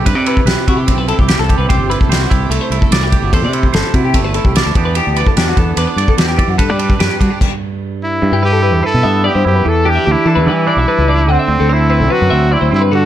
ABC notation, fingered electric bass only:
X:1
M:4/4
L:1/16
Q:1/4=147
K:G
V:1 name="Fingered electric bass" clef=bass
G,, C,3 B,,, z C,2 B,,,3 C,,2 C,,2 C,, | C,, G,,,2 z C,,2 C,,2 C,, z C,, z C,,3 G,,, | E,, C,3 G,,, z C,2 G,,,3 C,,2 D,, E,,2- | E,, D,,2 z E,,2 E,,2 E,, z G,, z E,,3 F,, |
G,, G,3 F,, z G, z8 z | G,, G,,4 E,, z B,, G,,3 G,, F,,2 E,,2- | E,,2 D,, z E, E,, E,3 B,,, z ^C,,3 D,, z | D,, D,,4 C,, z F,, D,,3 D,, G,,4 |]